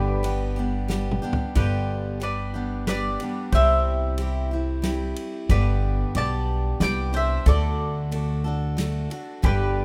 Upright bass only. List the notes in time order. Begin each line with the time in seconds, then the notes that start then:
Already playing: G1
1.56 G1
3.53 C2
5.49 G1
6.15 B1
6.80 C2
7.46 D2
9.44 G1